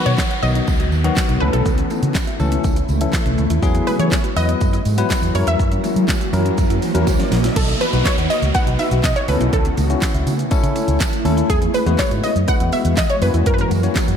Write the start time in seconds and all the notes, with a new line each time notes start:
Already playing: D#3 F#3 B3 F#4, downlifter
0.06 B2 C#5, closed hi-hat
0.18 D#4, kick, snare, clap, tambourine
0.31 F#5, closed hi-hat
0.43 B1 D#3 F#3 B3 F#4 D#5, tambourine
0.55 D#4, closed hi-hat
0.67 C#2 B3, kick, tambourine
0.80 F#4, closed hi-hat
0.92 D#2, tambourine
1.04 D#3 F#3 B3 F#4 F#5, closed hi-hat
1.17 F#3, kick, snare, clap, tambourine
1.29 B1 D#4, closed hi-hat
1.40 C#2 C#3 E3 A3 C#4 E4 A4 B4
1.53 B1 E4 A4, closed hi-hat
1.66 C#2 E3, kick, tambourine, shaker
1.78 C#4, closed hi-hat, shaker
1.90 A3, tambourine, shaker
2.03 C#3, closed hi-hat, shaker
2.15 C#4, kick, snare, clap, tambourine, shaker
2.27 E5, closed hi-hat, shaker
2.39 C#2 E3 A3 C#4 A4, tambourine, shaker
2.52 C#4, closed hi-hat, shaker
2.64 C#2 A3, kick, tambourine, shaker
2.76 E4, closed hi-hat, shaker
2.88 C#2, tambourine, shaker
3.01 E3 A3 C#4 A4 E5, closed hi-hat, shaker
3.13 E3, kick, snare, clap, tambourine, shaker
3.26 B1 C#4, closed hi-hat, shaker
3.38 C#2 A3, shaker
3.50 D#2 E4, closed hi-hat, shaker
3.62 E2 E3 F#3 G#3 B3 E4 F#4 G#4, kick, tambourine, riser, shaker
3.75 B3, closed hi-hat, shaker
3.87 G#3 B4, open hi-hat, tambourine, shaker
3.99 E3 C#5, closed hi-hat, shaker
4.11 B3, kick, snare, clap, tambourine, shaker
4.24 F#4, closed hi-hat, shaker
4.36 E2 F#3 B3 E4 B4 D#5, open hi-hat, tambourine, shaker
4.49 B3, closed hi-hat, shaker
4.61 F#2 G#3, kick, tambourine, shaker
4.73 E4, closed hi-hat, shaker
4.85 G#2, open hi-hat, tambourine, shaker
4.98 F#3 B3 E4 F#4 B4, closed hi-hat, shaker
5.10 F#3, kick, snare, clap, tambourine, shaker
5.22 E2 B3, closed hi-hat, shaker
5.35 F#2 F#3 A#3 C#4 E4 A#4 C#5, open hi-hat, shaker
5.47 E2 E4 E5, closed hi-hat, shaker
5.59 F#3, kick, shaker
5.72 C#4, closed hi-hat, shaker
5.84 A#3, open hi-hat, tambourine, shaker
5.96 F#3, closed hi-hat, shaker
6.08 C#4, kick, snare, clap, tambourine, shaker
6.21 F#4, closed hi-hat, shaker
6.33 F#2 F#3 C#4 E4 A#4, open hi-hat, tambourine, shaker
6.45 C#4, closed hi-hat, shaker
6.57 F#2 A#3, kick, tambourine, shaker
6.70 F#2 E4, closed hi-hat, shaker
6.82 open hi-hat, tambourine, shaker
6.94 E2 F#3 C#4 E4 F#4 A#4, closed hi-hat, shaker
7.07 F#3, kick, snare, tambourine, shaker
7.20 C#4, snare, closed hi-hat, shaker
7.32 A#1 A#3, snare, open hi-hat, tambourine, shaker
7.44 E4, snare, closed hi-hat, shaker
7.56 B1 D#3 F#3 B3 F#4 A4, kick, closed hi-hat, crash, downlifter, shaker
7.68 D#4, closed hi-hat, shaker
7.81 B3 B4, open hi-hat, tambourine, shaker
7.93 B1 D#4 F#4 B4, closed hi-hat, shaker
8.05 D#4 C#5, kick, snare, clap, closed hi-hat, tambourine, shaker
8.18 D#2 F#5, closed hi-hat, shaker
8.30 D#5, open hi-hat, tambourine, shaker
8.42 C#2, closed hi-hat, shaker
8.54 B3 D#4 F#4 B4 F#5, kick, closed hi-hat, tambourine, shaker
8.67 B1 F#4, closed hi-hat, shaker
8.79 D#4 E5, open hi-hat, tambourine, shaker
8.91 B1, closed hi-hat, shaker
9.04 B2 D#5, kick, snare, clap, closed hi-hat, tambourine, shaker
9.16 C#5, closed hi-hat, shaker
9.28 C#2 C#3 A3 C#4 E4 A4 B4, open hi-hat, tambourine, shaker
9.40 B1 E4, closed hi-hat, shaker
9.53 E3 A4, kick, closed hi-hat, shaker
9.65 C#4, closed hi-hat, shaker
9.77 C#2 A3, open hi-hat, tambourine, shaker
9.90 C#4 E4 F#4, closed hi-hat, shaker
10.02 C#4, kick, snare, clap, closed hi-hat, tambourine, shaker
10.14 C#2 E5, closed hi-hat, shaker
10.27 C#3, open hi-hat, tambourine, shaker
10.39 closed hi-hat, shaker
10.51 A3 C#4 E4 A4, muted fingered electric bass stroke, kick, closed hi-hat, tambourine, shaker
10.63 C#3 E4, closed hi-hat, shaker
10.76 C#4, open hi-hat, tambourine, shaker
10.88 C#2, closed hi-hat, shaker
11.00 kick, snare, clap, closed hi-hat, tambourine, shaker
11.13 closed hi-hat, shaker
11.25 D#2 A3 C#4 E4 A4, open hi-hat, shaker
11.37 E4, closed hi-hat, shaker
11.49 E2 E3 F#3 G#3 F#4 G#4, kick, closed hi-hat, tambourine, shaker
11.62 B3, closed hi-hat, shaker
11.74 G#3 B4, open hi-hat, tambourine, shaker
11.86 E2 G#3 B3 E4 F#4 B4, closed hi-hat, shaker
11.99 B3 C#5, kick, snare, clap, closed hi-hat, tambourine, shaker
12.11 G#2 F#4, closed hi-hat, shaker
12.23 D#5, open hi-hat, tambourine, shaker
12.36 F#2, closed hi-hat, shaker
12.47 G#3 B3 E4 F#4 B4 F#5, kick, closed hi-hat, tambourine, shaker
12.60 E2 E4, closed hi-hat, shaker
12.72 B3 E5, open hi-hat, tambourine, shaker
12.85 E2, closed hi-hat, shaker
12.97 D#5, kick, snare, clap, closed hi-hat, tambourine, shaker
13.10 C#5, closed hi-hat, shaker
13.22 F#2 A#3 C#4 E4 F#4 B4 C#5, open hi-hat, tambourine, shaker
13.34 E2 E4, closed hi-hat, shaker
13.46 F#3 A#4, kick, closed hi-hat, shaker
13.54 B4
13.58 C#4 A#4, closed hi-hat, shaker
13.71 F#2 A#3, open hi-hat, tambourine, shaker
13.83 A#3 C#4 E4 F#4 C#5, closed hi-hat, shaker
13.95 C#4, kick, snare, clap, closed hi-hat, tambourine, shaker
14.08 F#2 F#4, closed hi-hat, shaker